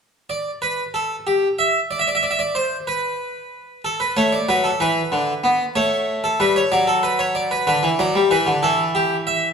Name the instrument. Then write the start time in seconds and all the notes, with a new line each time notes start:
harpsichord
0.30 D5
0.62 B4
0.94 A4
1.27 G4
1.59 E5
1.91 D5
1.99 E5
2.07 D5
2.15 E5
2.23 D5
2.31 E5
2.39 D5
2.55 C5
2.87 B4
3.85 A4
4.00 B4
4.17 A3 C#5
4.32 D5
4.49 F#3 B4
4.64 A4
4.80 E3 B4
5.12 D3
5.44 B3
5.76 A3 C#5
6.24 A4
6.40 G3 B4
6.56 C#5
6.72 F#3 D5
6.87 A4
7.03 B4
7.19 C#5
7.35 D5
7.51 B4
7.67 D3 B4
7.83 E3
7.99 F#3 D5
8.15 G3
8.31 E3 B4
8.47 D3
8.63 E3 A4
8.95 G4
9.27 E5